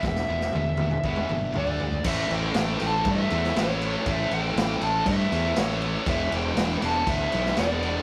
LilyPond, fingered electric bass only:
\new Staff \with { instrumentName = "Fingered electric bass" } { \clef bass \time 4/4 \key a \dorian \tempo 4 = 120 e,,8 e,,8 e,,4 e,,8 g,,8 d,4 | a,,8 a,,8 a,,8 a,,8 g,8 e,8 a,,4 | a,,8 a,,8 a,,8 a,,8 g,8 e,8 a,,4 | e,,8 e,,8 e,,8 e,,8 d,8 b,,8 e,,4 | }